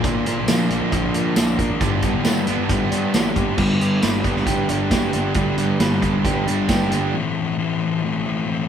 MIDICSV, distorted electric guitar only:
0, 0, Header, 1, 2, 480
1, 0, Start_track
1, 0, Tempo, 443131
1, 49, Time_signature, 4, 2, 24, 8
1, 9403, End_track
2, 0, Start_track
2, 0, Title_t, "Distorted electric guitar"
2, 0, Program_c, 0, 30
2, 49, Note_on_c, 0, 46, 80
2, 289, Note_on_c, 0, 58, 68
2, 526, Note_on_c, 0, 53, 73
2, 749, Note_off_c, 0, 58, 0
2, 762, Note_on_c, 0, 58, 66
2, 982, Note_off_c, 0, 53, 0
2, 995, Note_on_c, 0, 53, 78
2, 1241, Note_on_c, 0, 62, 67
2, 1248, Note_off_c, 0, 46, 0
2, 1463, Note_off_c, 0, 58, 0
2, 1476, Note_on_c, 0, 58, 69
2, 1713, Note_on_c, 0, 70, 79
2, 1960, Note_off_c, 0, 70, 0
2, 1961, Note_off_c, 0, 53, 0
2, 1961, Note_off_c, 0, 58, 0
2, 1964, Note_on_c, 0, 43, 77
2, 2210, Note_on_c, 0, 59, 72
2, 2449, Note_on_c, 0, 55, 79
2, 2669, Note_off_c, 0, 59, 0
2, 2682, Note_on_c, 0, 59, 71
2, 2918, Note_off_c, 0, 55, 0
2, 2931, Note_on_c, 0, 55, 78
2, 3150, Note_off_c, 0, 62, 0
2, 3154, Note_on_c, 0, 62, 73
2, 3166, Note_off_c, 0, 43, 0
2, 3383, Note_off_c, 0, 59, 0
2, 3396, Note_on_c, 0, 59, 72
2, 3649, Note_on_c, 0, 67, 84
2, 3876, Note_off_c, 0, 55, 0
2, 3879, Note_on_c, 0, 43, 88
2, 3882, Note_off_c, 0, 59, 0
2, 3882, Note_off_c, 0, 62, 0
2, 3888, Note_on_c, 0, 50, 96
2, 3889, Note_off_c, 0, 67, 0
2, 3889, Note_on_c, 0, 55, 101
2, 3893, Note_on_c, 0, 59, 112
2, 3903, Note_on_c, 0, 62, 97
2, 4108, Note_off_c, 0, 62, 0
2, 4113, Note_on_c, 0, 62, 67
2, 4120, Note_off_c, 0, 59, 0
2, 4124, Note_on_c, 0, 59, 63
2, 4136, Note_off_c, 0, 55, 0
2, 4140, Note_on_c, 0, 55, 55
2, 4343, Note_off_c, 0, 50, 0
2, 4345, Note_off_c, 0, 43, 0
2, 4349, Note_on_c, 0, 43, 83
2, 4356, Note_on_c, 0, 50, 89
2, 4359, Note_off_c, 0, 55, 0
2, 4363, Note_on_c, 0, 55, 83
2, 4365, Note_off_c, 0, 59, 0
2, 4368, Note_off_c, 0, 62, 0
2, 4369, Note_on_c, 0, 59, 100
2, 4372, Note_on_c, 0, 62, 99
2, 4587, Note_off_c, 0, 62, 0
2, 4591, Note_on_c, 0, 62, 74
2, 4600, Note_off_c, 0, 59, 0
2, 4604, Note_on_c, 0, 59, 65
2, 4613, Note_off_c, 0, 55, 0
2, 4617, Note_on_c, 0, 55, 59
2, 4816, Note_off_c, 0, 50, 0
2, 4828, Note_off_c, 0, 55, 0
2, 4829, Note_on_c, 0, 50, 75
2, 4835, Note_off_c, 0, 59, 0
2, 4841, Note_on_c, 0, 55, 76
2, 4843, Note_off_c, 0, 62, 0
2, 4848, Note_on_c, 0, 59, 85
2, 4856, Note_on_c, 0, 62, 94
2, 5065, Note_off_c, 0, 62, 0
2, 5073, Note_off_c, 0, 59, 0
2, 5078, Note_on_c, 0, 62, 89
2, 5079, Note_off_c, 0, 55, 0
2, 5084, Note_off_c, 0, 50, 0
2, 5086, Note_on_c, 0, 59, 76
2, 5092, Note_on_c, 0, 55, 79
2, 5096, Note_off_c, 0, 43, 0
2, 5097, Note_on_c, 0, 50, 69
2, 5101, Note_on_c, 0, 43, 75
2, 5295, Note_off_c, 0, 50, 0
2, 5307, Note_off_c, 0, 55, 0
2, 5308, Note_on_c, 0, 50, 77
2, 5314, Note_off_c, 0, 59, 0
2, 5319, Note_off_c, 0, 62, 0
2, 5320, Note_on_c, 0, 55, 75
2, 5327, Note_on_c, 0, 59, 74
2, 5332, Note_on_c, 0, 62, 82
2, 5548, Note_off_c, 0, 62, 0
2, 5561, Note_on_c, 0, 62, 73
2, 5562, Note_off_c, 0, 59, 0
2, 5570, Note_off_c, 0, 55, 0
2, 5575, Note_on_c, 0, 59, 68
2, 5577, Note_off_c, 0, 43, 0
2, 5583, Note_on_c, 0, 55, 61
2, 5788, Note_off_c, 0, 50, 0
2, 5793, Note_off_c, 0, 55, 0
2, 5794, Note_on_c, 0, 43, 89
2, 5801, Note_off_c, 0, 59, 0
2, 5801, Note_on_c, 0, 50, 97
2, 5804, Note_off_c, 0, 62, 0
2, 5806, Note_on_c, 0, 55, 109
2, 5814, Note_on_c, 0, 59, 98
2, 5817, Note_on_c, 0, 62, 97
2, 6029, Note_off_c, 0, 62, 0
2, 6036, Note_off_c, 0, 59, 0
2, 6042, Note_on_c, 0, 62, 73
2, 6049, Note_off_c, 0, 55, 0
2, 6049, Note_on_c, 0, 59, 66
2, 6062, Note_on_c, 0, 55, 65
2, 6269, Note_off_c, 0, 43, 0
2, 6274, Note_off_c, 0, 50, 0
2, 6281, Note_off_c, 0, 55, 0
2, 6282, Note_on_c, 0, 43, 91
2, 6286, Note_off_c, 0, 59, 0
2, 6287, Note_on_c, 0, 50, 95
2, 6290, Note_off_c, 0, 62, 0
2, 6294, Note_on_c, 0, 55, 95
2, 6299, Note_on_c, 0, 59, 92
2, 6303, Note_on_c, 0, 62, 97
2, 6509, Note_off_c, 0, 62, 0
2, 6522, Note_off_c, 0, 59, 0
2, 6522, Note_on_c, 0, 62, 71
2, 6534, Note_off_c, 0, 55, 0
2, 6535, Note_on_c, 0, 59, 61
2, 6547, Note_on_c, 0, 55, 58
2, 6752, Note_off_c, 0, 50, 0
2, 6764, Note_off_c, 0, 55, 0
2, 6765, Note_on_c, 0, 50, 77
2, 6768, Note_off_c, 0, 43, 0
2, 6772, Note_off_c, 0, 59, 0
2, 6775, Note_off_c, 0, 62, 0
2, 6777, Note_on_c, 0, 55, 84
2, 6785, Note_on_c, 0, 59, 81
2, 6788, Note_on_c, 0, 62, 84
2, 6989, Note_off_c, 0, 62, 0
2, 6992, Note_off_c, 0, 59, 0
2, 7001, Note_off_c, 0, 55, 0
2, 7002, Note_on_c, 0, 62, 92
2, 7004, Note_off_c, 0, 50, 0
2, 7005, Note_on_c, 0, 59, 82
2, 7014, Note_on_c, 0, 55, 80
2, 7017, Note_on_c, 0, 50, 72
2, 7021, Note_on_c, 0, 43, 78
2, 7224, Note_off_c, 0, 50, 0
2, 7235, Note_off_c, 0, 55, 0
2, 7237, Note_on_c, 0, 50, 76
2, 7241, Note_off_c, 0, 59, 0
2, 7248, Note_on_c, 0, 55, 78
2, 7253, Note_off_c, 0, 62, 0
2, 7254, Note_on_c, 0, 59, 76
2, 7266, Note_on_c, 0, 62, 85
2, 7472, Note_off_c, 0, 62, 0
2, 7485, Note_on_c, 0, 62, 69
2, 7488, Note_off_c, 0, 59, 0
2, 7493, Note_off_c, 0, 55, 0
2, 7498, Note_off_c, 0, 43, 0
2, 7501, Note_on_c, 0, 59, 62
2, 7506, Note_on_c, 0, 55, 63
2, 7712, Note_off_c, 0, 50, 0
2, 7715, Note_off_c, 0, 62, 0
2, 7724, Note_off_c, 0, 59, 0
2, 7726, Note_off_c, 0, 55, 0
2, 7726, Note_on_c, 0, 45, 96
2, 7736, Note_on_c, 0, 52, 98
2, 7743, Note_on_c, 0, 57, 103
2, 7746, Note_on_c, 0, 60, 107
2, 7750, Note_on_c, 0, 64, 106
2, 7964, Note_off_c, 0, 64, 0
2, 7968, Note_on_c, 0, 64, 82
2, 7973, Note_off_c, 0, 60, 0
2, 7978, Note_on_c, 0, 60, 72
2, 7985, Note_off_c, 0, 57, 0
2, 7990, Note_on_c, 0, 57, 62
2, 8194, Note_off_c, 0, 45, 0
2, 8198, Note_off_c, 0, 52, 0
2, 8198, Note_on_c, 0, 45, 101
2, 8203, Note_on_c, 0, 52, 96
2, 8206, Note_off_c, 0, 57, 0
2, 8210, Note_on_c, 0, 57, 95
2, 8213, Note_off_c, 0, 60, 0
2, 8217, Note_on_c, 0, 60, 93
2, 8218, Note_off_c, 0, 64, 0
2, 8223, Note_on_c, 0, 64, 106
2, 8442, Note_off_c, 0, 64, 0
2, 8446, Note_on_c, 0, 64, 77
2, 8454, Note_off_c, 0, 60, 0
2, 8459, Note_on_c, 0, 60, 70
2, 8466, Note_off_c, 0, 57, 0
2, 8470, Note_on_c, 0, 57, 57
2, 8692, Note_off_c, 0, 52, 0
2, 8696, Note_on_c, 0, 52, 84
2, 8699, Note_off_c, 0, 60, 0
2, 8701, Note_off_c, 0, 57, 0
2, 8704, Note_off_c, 0, 64, 0
2, 8705, Note_on_c, 0, 57, 84
2, 8712, Note_on_c, 0, 60, 87
2, 8717, Note_on_c, 0, 64, 96
2, 8919, Note_off_c, 0, 64, 0
2, 8925, Note_off_c, 0, 60, 0
2, 8932, Note_on_c, 0, 64, 86
2, 8938, Note_on_c, 0, 60, 81
2, 8941, Note_off_c, 0, 57, 0
2, 8942, Note_off_c, 0, 52, 0
2, 8946, Note_on_c, 0, 57, 84
2, 8951, Note_off_c, 0, 45, 0
2, 8955, Note_on_c, 0, 45, 76
2, 8955, Note_on_c, 0, 52, 81
2, 9153, Note_off_c, 0, 52, 0
2, 9166, Note_on_c, 0, 52, 74
2, 9170, Note_off_c, 0, 60, 0
2, 9171, Note_off_c, 0, 57, 0
2, 9175, Note_on_c, 0, 57, 80
2, 9177, Note_off_c, 0, 64, 0
2, 9183, Note_on_c, 0, 60, 83
2, 9190, Note_on_c, 0, 64, 89
2, 9381, Note_off_c, 0, 64, 0
2, 9396, Note_off_c, 0, 60, 0
2, 9403, Note_off_c, 0, 45, 0
2, 9403, Note_off_c, 0, 52, 0
2, 9403, Note_off_c, 0, 57, 0
2, 9403, End_track
0, 0, End_of_file